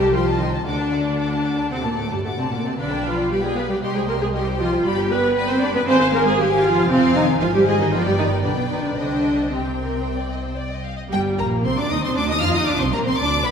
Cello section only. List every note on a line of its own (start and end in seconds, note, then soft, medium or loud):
0.00 0.14 G3 medium
0.14 0.40 F3 medium
0.40 0.66 D#3 medium
0.66 1.69 D3 medium
1.71 1.84 C3 medium
1.84 1.98 A#2 medium
1.98 2.11 A2 medium
2.11 2.24 G2 soft
2.25 2.30 A2 medium
2.38 2.51 C3 soft
2.51 2.56 A#2 medium
2.64 2.77 C3 medium
2.77 3.03 D3 medium
3.03 3.29 F3 medium
3.29 3.43 G3 medium
3.43 3.56 G#3 medium
3.55 3.61 B3 medium
3.69 3.80 G3 medium
3.81 3.94 G3 medium
3.94 4.08 G#3 medium
4.07 4.20 A#3 medium
4.20 4.33 G#3 medium
4.33 4.59 G3 medium
4.59 4.67 F3 medium
4.85 5.10 G3 medium
5.11 5.35 B3 medium
5.36 5.49 B3 medium
5.49 5.61 C4 medium
5.62 5.67 D4 medium
5.74 5.79 B3 medium
5.87 5.98 C4 loud
6.00 6.05 C4 medium
6.12 6.17 A#3 medium
6.25 6.30 G#3 medium
6.38 6.46 G3 medium
6.64 6.89 F3 medium
6.89 7.14 C3 medium
7.15 7.40 D#3 medium
7.41 7.53 F3 medium
7.54 7.59 G3 medium
7.67 7.72 G#3 medium
7.80 7.85 D#3 medium
7.93 8.05 F3 medium
8.06 8.11 G3 medium
8.19 8.27 D#3 medium
8.45 8.57 D3 medium
8.58 8.71 B2 medium
8.71 8.77 D#3 medium
8.84 8.89 D3 medium
8.97 9.50 D3 medium
9.51 10.58 C3 soft
11.12 11.20 G3 medium
11.38 11.64 A#3 medium
11.65 11.77 C4 medium
11.77 11.90 D4 medium
11.91 11.96 D#4 medium
12.03 12.16 C4 medium
12.16 12.28 D4 medium
12.29 12.41 D#4 medium
12.42 12.54 F4 medium
12.54 12.67 D#4 medium
12.67 12.79 D4 medium
12.80 12.93 C4 medium
12.93 13.05 A#3 medium
13.06 13.11 C4 medium
13.18 13.44 D4 medium
13.44 13.51 B3 medium